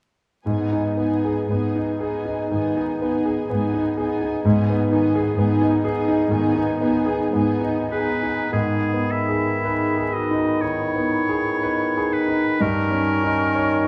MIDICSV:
0, 0, Header, 1, 10, 480
1, 0, Start_track
1, 0, Key_signature, 5, "minor"
1, 0, Tempo, 1038062
1, 213, Time_signature, 4, 2, 24, 8
1, 692, Tempo, 1003344
1, 1652, Tempo, 936037
1, 3092, Tempo, 1018676
1, 3572, Tempo, 1200000
1, 4052, Tempo, 1107011
1, 4532, Tempo, 990099
1, 5972, Tempo, 927357
1, 6629, End_track
2, 0, Start_track
2, 0, Title_t, "Flute"
2, 0, Program_c, 0, 73
2, 4047, Note_on_c, 0, 83, 38
2, 5949, Note_off_c, 0, 83, 0
2, 5968, Note_on_c, 0, 85, 46
2, 6629, Note_off_c, 0, 85, 0
2, 6629, End_track
3, 0, Start_track
3, 0, Title_t, "Violin section"
3, 0, Program_c, 1, 48
3, 211, Note_on_c, 1, 68, 36
3, 211, Note_on_c, 1, 80, 35
3, 448, Note_off_c, 1, 68, 0
3, 448, Note_off_c, 1, 80, 0
3, 452, Note_on_c, 1, 68, 31
3, 453, Note_on_c, 1, 80, 30
3, 684, Note_off_c, 1, 68, 0
3, 684, Note_off_c, 1, 80, 0
3, 689, Note_on_c, 1, 80, 31
3, 690, Note_on_c, 1, 68, 34
3, 930, Note_off_c, 1, 68, 0
3, 930, Note_off_c, 1, 80, 0
3, 936, Note_on_c, 1, 80, 32
3, 938, Note_on_c, 1, 68, 33
3, 1174, Note_off_c, 1, 80, 0
3, 1175, Note_off_c, 1, 68, 0
3, 1180, Note_on_c, 1, 80, 35
3, 1181, Note_on_c, 1, 68, 36
3, 1415, Note_off_c, 1, 68, 0
3, 1415, Note_off_c, 1, 80, 0
3, 1423, Note_on_c, 1, 68, 33
3, 1423, Note_on_c, 1, 80, 34
3, 1650, Note_off_c, 1, 68, 0
3, 1650, Note_off_c, 1, 80, 0
3, 1659, Note_on_c, 1, 68, 34
3, 1659, Note_on_c, 1, 80, 38
3, 1895, Note_off_c, 1, 68, 0
3, 1895, Note_off_c, 1, 80, 0
3, 1901, Note_on_c, 1, 80, 37
3, 1902, Note_on_c, 1, 68, 36
3, 2135, Note_off_c, 1, 68, 0
3, 2135, Note_off_c, 1, 80, 0
3, 2142, Note_on_c, 1, 80, 47
3, 2143, Note_on_c, 1, 68, 45
3, 2372, Note_off_c, 1, 68, 0
3, 2372, Note_off_c, 1, 80, 0
3, 2379, Note_on_c, 1, 80, 39
3, 2381, Note_on_c, 1, 68, 40
3, 2606, Note_off_c, 1, 80, 0
3, 2607, Note_off_c, 1, 68, 0
3, 2611, Note_on_c, 1, 80, 44
3, 2614, Note_on_c, 1, 68, 47
3, 2843, Note_off_c, 1, 68, 0
3, 2844, Note_off_c, 1, 80, 0
3, 2849, Note_on_c, 1, 68, 47
3, 2851, Note_on_c, 1, 80, 46
3, 3089, Note_off_c, 1, 68, 0
3, 3090, Note_off_c, 1, 80, 0
3, 3096, Note_on_c, 1, 68, 51
3, 3097, Note_on_c, 1, 80, 52
3, 3321, Note_off_c, 1, 80, 0
3, 3323, Note_off_c, 1, 68, 0
3, 3327, Note_on_c, 1, 80, 43
3, 3328, Note_on_c, 1, 68, 44
3, 3568, Note_off_c, 1, 80, 0
3, 3569, Note_off_c, 1, 68, 0
3, 3578, Note_on_c, 1, 80, 41
3, 3579, Note_on_c, 1, 68, 47
3, 3800, Note_off_c, 1, 68, 0
3, 3801, Note_off_c, 1, 80, 0
3, 3805, Note_on_c, 1, 68, 39
3, 3806, Note_on_c, 1, 80, 40
3, 4047, Note_off_c, 1, 68, 0
3, 4048, Note_off_c, 1, 80, 0
3, 6629, End_track
4, 0, Start_track
4, 0, Title_t, "Oboe"
4, 0, Program_c, 2, 68
4, 3807, Note_on_c, 2, 71, 61
4, 4037, Note_off_c, 2, 71, 0
4, 4052, Note_on_c, 2, 68, 54
4, 4305, Note_on_c, 2, 76, 57
4, 4311, Note_off_c, 2, 68, 0
4, 4773, Note_on_c, 2, 75, 50
4, 4780, Note_off_c, 2, 76, 0
4, 5006, Note_on_c, 2, 73, 62
4, 5013, Note_off_c, 2, 75, 0
4, 5740, Note_on_c, 2, 71, 64
4, 5747, Note_off_c, 2, 73, 0
4, 5978, Note_on_c, 2, 70, 67
4, 5986, Note_off_c, 2, 71, 0
4, 6629, Note_off_c, 2, 70, 0
4, 6629, End_track
5, 0, Start_track
5, 0, Title_t, "Clarinet"
5, 0, Program_c, 3, 71
5, 3807, Note_on_c, 3, 63, 55
5, 4053, Note_on_c, 3, 59, 44
5, 4059, Note_off_c, 3, 63, 0
5, 4302, Note_off_c, 3, 59, 0
5, 4304, Note_on_c, 3, 68, 49
5, 4773, Note_on_c, 3, 66, 44
5, 4780, Note_off_c, 3, 68, 0
5, 4998, Note_off_c, 3, 66, 0
5, 5001, Note_on_c, 3, 64, 56
5, 5738, Note_on_c, 3, 63, 49
5, 5746, Note_off_c, 3, 64, 0
5, 5958, Note_off_c, 3, 63, 0
5, 5961, Note_on_c, 3, 61, 55
5, 6629, Note_off_c, 3, 61, 0
5, 6629, End_track
6, 0, Start_track
6, 0, Title_t, "Grand piano"
6, 0, Program_c, 4, 0
6, 212, Note_on_c, 4, 44, 35
6, 297, Control_c, 4, 64, 127
6, 336, Note_on_c, 4, 63, 33
6, 449, Note_on_c, 4, 59, 27
6, 527, Note_off_c, 4, 63, 0
6, 576, Note_on_c, 4, 68, 31
6, 643, Note_off_c, 4, 59, 0
6, 696, Note_on_c, 4, 59, 31
6, 768, Note_off_c, 4, 68, 0
6, 817, Note_on_c, 4, 63, 31
6, 890, Note_off_c, 4, 59, 0
6, 934, Note_on_c, 4, 68, 36
6, 1010, Note_off_c, 4, 63, 0
6, 1054, Note_on_c, 4, 63, 33
6, 1129, Note_off_c, 4, 68, 0
6, 1159, Note_off_c, 4, 44, 0
6, 1179, Note_on_c, 4, 51, 30
6, 1249, Note_off_c, 4, 63, 0
6, 1301, Note_on_c, 4, 63, 29
6, 1371, Note_off_c, 4, 51, 0
6, 1420, Note_on_c, 4, 59, 32
6, 1490, Note_off_c, 4, 63, 0
6, 1533, Note_on_c, 4, 68, 36
6, 1607, Note_off_c, 4, 59, 0
6, 1650, Note_on_c, 4, 59, 37
6, 1724, Note_off_c, 4, 68, 0
6, 1773, Note_on_c, 4, 63, 33
6, 1847, Note_off_c, 4, 59, 0
6, 1893, Note_on_c, 4, 68, 36
6, 1968, Note_off_c, 4, 63, 0
6, 2018, Note_on_c, 4, 63, 38
6, 2088, Note_off_c, 4, 68, 0
6, 2139, Note_on_c, 4, 44, 47
6, 2146, Control_c, 4, 64, 0
6, 2209, Note_off_c, 4, 63, 0
6, 2219, Control_c, 4, 64, 127
6, 2265, Note_on_c, 4, 59, 39
6, 2381, Note_on_c, 4, 51, 42
6, 2448, Note_off_c, 4, 59, 0
6, 2498, Note_on_c, 4, 68, 45
6, 2565, Note_off_c, 4, 51, 0
6, 2617, Note_on_c, 4, 59, 45
6, 2683, Note_off_c, 4, 68, 0
6, 2734, Note_on_c, 4, 63, 41
6, 2803, Note_off_c, 4, 59, 0
6, 2854, Note_on_c, 4, 68, 52
6, 2924, Note_off_c, 4, 63, 0
6, 2974, Note_on_c, 4, 63, 45
6, 3046, Note_off_c, 4, 68, 0
6, 3073, Note_off_c, 4, 44, 0
6, 3091, Note_on_c, 4, 51, 44
6, 3164, Note_off_c, 4, 63, 0
6, 3207, Note_on_c, 4, 63, 46
6, 3278, Note_off_c, 4, 51, 0
6, 3329, Note_on_c, 4, 59, 45
6, 3398, Note_off_c, 4, 63, 0
6, 3444, Note_on_c, 4, 68, 45
6, 3524, Note_off_c, 4, 59, 0
6, 3572, Note_on_c, 4, 59, 41
6, 3638, Note_off_c, 4, 68, 0
6, 3685, Note_on_c, 4, 63, 39
6, 3755, Note_off_c, 4, 59, 0
6, 3809, Note_on_c, 4, 68, 40
6, 3880, Note_off_c, 4, 63, 0
6, 3932, Note_on_c, 4, 63, 33
6, 4005, Note_off_c, 4, 68, 0
6, 4051, Note_on_c, 4, 44, 44
6, 4054, Note_off_c, 4, 63, 0
6, 4061, Control_c, 4, 64, 0
6, 4154, Control_c, 4, 64, 127
6, 4228, Note_on_c, 4, 59, 35
6, 4381, Note_on_c, 4, 68, 34
6, 4476, Note_off_c, 4, 59, 0
6, 4536, Note_on_c, 4, 71, 36
6, 4627, Note_off_c, 4, 68, 0
6, 4695, Note_on_c, 4, 68, 33
6, 4790, Note_off_c, 4, 71, 0
6, 4858, Note_on_c, 4, 63, 36
6, 4947, Note_off_c, 4, 68, 0
6, 4988, Note_off_c, 4, 44, 0
6, 5011, Note_on_c, 4, 51, 35
6, 5108, Note_off_c, 4, 63, 0
6, 5173, Note_on_c, 4, 59, 34
6, 5268, Note_off_c, 4, 51, 0
6, 5333, Note_on_c, 4, 68, 40
6, 5434, Note_off_c, 4, 59, 0
6, 5498, Note_on_c, 4, 71, 41
6, 5596, Note_off_c, 4, 68, 0
6, 5664, Note_on_c, 4, 68, 41
6, 5755, Note_off_c, 4, 71, 0
6, 5814, Note_on_c, 4, 63, 41
6, 5912, Note_off_c, 4, 68, 0
6, 5970, Note_off_c, 4, 63, 0
6, 5971, Note_on_c, 4, 43, 49
6, 5981, Control_c, 4, 64, 0
6, 6064, Control_c, 4, 64, 127
6, 6130, Note_on_c, 4, 61, 45
6, 6298, Note_on_c, 4, 63, 41
6, 6389, Note_off_c, 4, 61, 0
6, 6459, Note_on_c, 4, 73, 49
6, 6550, Note_off_c, 4, 63, 0
6, 6611, Note_on_c, 4, 63, 42
6, 6629, Note_off_c, 4, 43, 0
6, 6629, Note_off_c, 4, 63, 0
6, 6629, Note_off_c, 4, 73, 0
6, 6629, End_track
7, 0, Start_track
7, 0, Title_t, "French horn section"
7, 0, Program_c, 5, 60
7, 212, Note_on_c, 5, 59, 39
7, 214, Note_on_c, 5, 63, 34
7, 2116, Note_off_c, 5, 59, 0
7, 2118, Note_off_c, 5, 63, 0
7, 2140, Note_on_c, 5, 59, 45
7, 2140, Note_on_c, 5, 63, 50
7, 3880, Note_off_c, 5, 59, 0
7, 3880, Note_off_c, 5, 63, 0
7, 4053, Note_on_c, 5, 59, 46
7, 4056, Note_on_c, 5, 63, 45
7, 5953, Note_off_c, 5, 59, 0
7, 5954, Note_off_c, 5, 63, 0
7, 5977, Note_on_c, 5, 63, 46
7, 5981, Note_on_c, 5, 61, 53
7, 6629, Note_off_c, 5, 61, 0
7, 6629, Note_off_c, 5, 63, 0
7, 6629, End_track
8, 0, Start_track
8, 0, Title_t, "Viola section"
8, 0, Program_c, 6, 48
8, 215, Note_on_c, 6, 59, 35
8, 217, Note_on_c, 6, 63, 34
8, 450, Note_off_c, 6, 59, 0
8, 451, Note_off_c, 6, 63, 0
8, 456, Note_on_c, 6, 63, 34
8, 457, Note_on_c, 6, 59, 31
8, 688, Note_off_c, 6, 59, 0
8, 689, Note_off_c, 6, 63, 0
8, 694, Note_on_c, 6, 59, 33
8, 694, Note_on_c, 6, 63, 31
8, 932, Note_off_c, 6, 63, 0
8, 933, Note_off_c, 6, 59, 0
8, 937, Note_on_c, 6, 63, 32
8, 938, Note_on_c, 6, 59, 30
8, 1172, Note_off_c, 6, 59, 0
8, 1174, Note_off_c, 6, 63, 0
8, 1178, Note_on_c, 6, 59, 36
8, 1180, Note_on_c, 6, 63, 40
8, 1413, Note_off_c, 6, 59, 0
8, 1414, Note_off_c, 6, 63, 0
8, 1422, Note_on_c, 6, 59, 34
8, 1422, Note_on_c, 6, 63, 31
8, 1649, Note_off_c, 6, 59, 0
8, 1650, Note_off_c, 6, 63, 0
8, 1656, Note_on_c, 6, 59, 41
8, 1658, Note_on_c, 6, 63, 40
8, 1894, Note_off_c, 6, 59, 0
8, 1895, Note_off_c, 6, 63, 0
8, 1904, Note_on_c, 6, 59, 41
8, 1905, Note_on_c, 6, 63, 37
8, 2136, Note_off_c, 6, 59, 0
8, 2137, Note_off_c, 6, 63, 0
8, 2142, Note_on_c, 6, 59, 46
8, 2144, Note_on_c, 6, 63, 42
8, 2370, Note_off_c, 6, 59, 0
8, 2371, Note_off_c, 6, 63, 0
8, 2376, Note_on_c, 6, 59, 45
8, 2378, Note_on_c, 6, 63, 42
8, 2605, Note_off_c, 6, 59, 0
8, 2605, Note_off_c, 6, 63, 0
8, 2612, Note_on_c, 6, 63, 47
8, 2613, Note_on_c, 6, 59, 46
8, 2844, Note_off_c, 6, 63, 0
8, 2845, Note_off_c, 6, 59, 0
8, 2853, Note_on_c, 6, 59, 43
8, 2853, Note_on_c, 6, 63, 42
8, 3090, Note_off_c, 6, 59, 0
8, 3091, Note_off_c, 6, 63, 0
8, 3097, Note_on_c, 6, 59, 50
8, 3098, Note_on_c, 6, 63, 52
8, 3324, Note_off_c, 6, 59, 0
8, 3324, Note_off_c, 6, 63, 0
8, 3331, Note_on_c, 6, 63, 46
8, 3333, Note_on_c, 6, 59, 42
8, 3569, Note_off_c, 6, 59, 0
8, 3570, Note_off_c, 6, 63, 0
8, 3575, Note_on_c, 6, 59, 49
8, 3575, Note_on_c, 6, 63, 47
8, 3801, Note_off_c, 6, 59, 0
8, 3802, Note_off_c, 6, 63, 0
8, 3808, Note_on_c, 6, 63, 39
8, 3810, Note_on_c, 6, 59, 40
8, 4049, Note_off_c, 6, 63, 0
8, 4050, Note_off_c, 6, 59, 0
8, 6629, End_track
9, 0, Start_track
9, 0, Title_t, "Bassoon"
9, 0, Program_c, 7, 70
9, 4052, Note_on_c, 7, 51, 41
9, 5952, Note_off_c, 7, 51, 0
9, 5972, Note_on_c, 7, 51, 47
9, 6629, Note_off_c, 7, 51, 0
9, 6629, End_track
10, 0, Start_track
10, 0, Title_t, "Cello section"
10, 0, Program_c, 8, 48
10, 213, Note_on_c, 8, 44, 40
10, 626, Note_off_c, 8, 44, 0
10, 693, Note_on_c, 8, 44, 42
10, 1112, Note_off_c, 8, 44, 0
10, 1183, Note_on_c, 8, 44, 41
10, 1589, Note_off_c, 8, 44, 0
10, 1655, Note_on_c, 8, 44, 50
10, 2070, Note_off_c, 8, 44, 0
10, 2140, Note_on_c, 8, 44, 53
10, 2542, Note_off_c, 8, 44, 0
10, 2609, Note_on_c, 8, 44, 59
10, 3022, Note_off_c, 8, 44, 0
10, 3090, Note_on_c, 8, 44, 57
10, 3502, Note_off_c, 8, 44, 0
10, 3571, Note_on_c, 8, 44, 52
10, 3987, Note_off_c, 8, 44, 0
10, 6629, End_track
0, 0, End_of_file